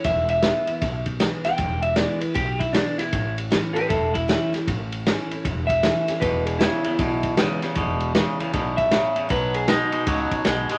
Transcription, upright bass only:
X:1
M:4/4
L:1/8
Q:"Swing" 1/4=156
K:E
V:1 name="Upright bass" clef=bass
E,,,3 z B,,,3 z | E,,,3 z B,,,3 z | A,,,3 z E,,,3 z | A,,,3 z E,,,3 z |
E,,,3 z B,,,3 z | E,,,3 z B,,,3 z | B,,,3 z C,, z B,,, z |]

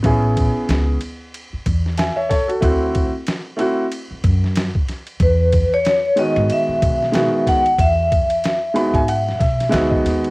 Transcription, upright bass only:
X:1
M:4/4
L:1/16
Q:"Swing 16ths" 1/4=93
K:E
V:1 name="Upright bass" clef=bass
A,,,3 z C,,2 z4 E,,3 z3 | =D,,3 z6 z F,,3 z3 | E,,3 z4 G,, z2 B,,3 z3 | E,,3 z4 G,,3 B,,2 =D,,2 ^D,,2 |]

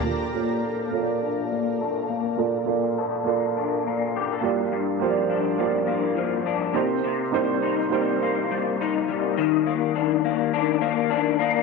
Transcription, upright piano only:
X:1
M:4/4
L:1/16
Q:"Swing 16ths" 1/4=103
K:Bb
V:1 name="Upright piano"
[B,FAd]2 [B,FA_d=d]3 z [B,FA_d=d]6 z4 | [B,FAd]2 [B,FAd]3 z [B,FAd]6 z2 [B,FGd]2- | [B,FGd]2 [B,FGcd]3 z [B,FGd]6 z2 [B,EGc]2- | [B,EGc]2 [B,EGc]3 z [B,EGc]6 z4 |
z16 |]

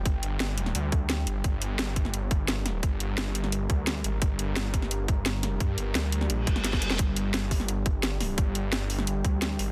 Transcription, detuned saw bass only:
X:1
M:4/4
L:1/8
Q:1/4=173
K:Gm
V:1 name="Detuned saw bass" clef=bass
G,,, G,,,3 D,,3 G,,, | G,,,4- G,,, G,,,3 | G,,,4- G,,, D,,2 _A,,, | G,,,4- G,,, G,,,3 |
G,, G,,, D,,2 B,,, G,,,3 | G,,,4- G,,, G,,,3 | G,,,4- G,,, D,,2 _A,,, |]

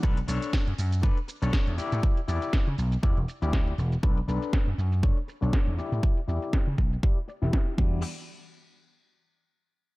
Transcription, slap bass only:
X:1
M:4/4
L:1/16
Q:"Swing 16ths" 1/4=120
K:Edor
V:1 name="Slap bass" clef=bass
B,,, z B,,, z2 F,, F,,2 z3 B,,, z E,, z A,, | z2 E,, z2 C, B,,, z E,, E,,, z D,,2 z E,,, z | B,,, z B,,, z2 F,, F,,2 z3 B,,, z E,, z A,, | z2 E,, z2 C, B,,, z4 E,,, z2 E,,2 |
z16 |]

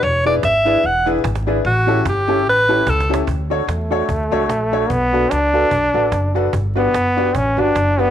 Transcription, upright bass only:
X:1
M:4/4
L:1/8
Q:"Swing" 1/4=148
K:D
V:1 name="Upright bass" clef=bass
E,,,2 ^G,,,2 E,,,2 G,,,2 | A,,,2 G,,,2 A,,,2 C,,2 | D,,2 E,,2 D,, C,, _B,,,2 | B,,,2 C,,2 B,,, A,,, F,,,2 |
G,,,2 F,,,2 A,,, G,,, F,,,2 |]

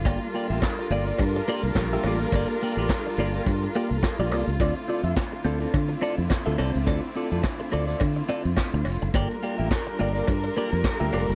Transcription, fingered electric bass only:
X:1
M:4/4
L:1/16
Q:"Swing 16ths" 1/4=106
K:Gdor
V:1 name="Fingered electric bass" clef=bass
G,,, z2 A,,, z2 G,,,2 G,,2 z C,, B,,,2 A,,,2 | G,,, z2 A,,, z2 G,,,2 G,,2 z C,, z B,,, C,, ^C,, | D,, z2 F,, z2 D,,2 D,2 z F,, z D,, C,, ^C,, | D,, z2 F,, z2 D,,2 D,2 z F,, z D,, F,,, ^F,,, |
G,,, z2 A,,, z2 G,,,2 G,,2 z F,, z D,, F,,, ^F,,, |]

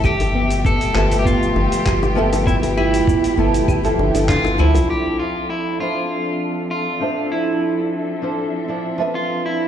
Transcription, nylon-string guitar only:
X:1
M:4/4
L:1/16
Q:1/4=99
K:Ddor
V:1 name="Nylon-string guitar"
z6 [F,B,Ae]8 [F,B,Ae]2- | [F,B,Ae]6 [F,B,EA]3 [F,B,EA]2 [F,B,EA]3 [F,DEc]2- | [F,DEc]2 z4 [F,Dce]8 [F,Dce]2- | [F,Dce]6 [F,DEc]3 [F,DEc]2 [F,DBe]4- [F,DBe] |]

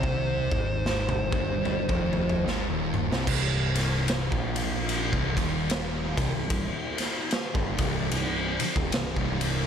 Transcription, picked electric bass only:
X:1
M:4/4
L:1/16
Q:"Swing" 1/4=74
K:Cm
V:1 name="Picked electric bass" clef=bass
C,,2 A,,,4 G,,,3 F,,,3 A,,, E,,,2 C,, | C,,,4- C,,, B,,,4 C,,, E,,,4 C,,, C,,,- | C,,, z4 G,,, C,,,2 C,,,2 z E,,, C,,, C,,,3 |]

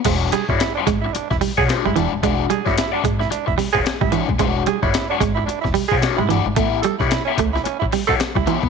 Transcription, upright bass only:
X:1
M:4/4
L:1/16
Q:"Swing 16ths" 1/4=110
K:Emix
V:1 name="Upright bass" clef=bass
E,,,2 z =G,,, z2 ^G,,,2 z E,,, z B,,, z G,,, E,,, ^D,,, | E,,,2 z =G,,, z2 ^G,,,2 z E,,, z E,,, z G,,, z ^D,,, | E,,,2 z =G,,, z2 ^G,,,2 z E,,, z B,,, z G,,, =G,,, ^G,,, | A,,,2 z B,,, z2 C,,2 z A,,, z A,,, z C,, z ^D,,, |]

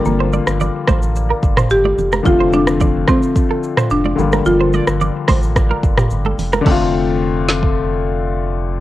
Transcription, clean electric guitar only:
X:1
M:4/4
L:1/16
Q:1/4=109
K:F
V:1 name="Clean electric guitar"
z c d z d z c z2 B z c z d z B | z c d z d z c z2 A z c z d z B | z c d z d z c z2 B z G z A z B | A2 z12 z2 |]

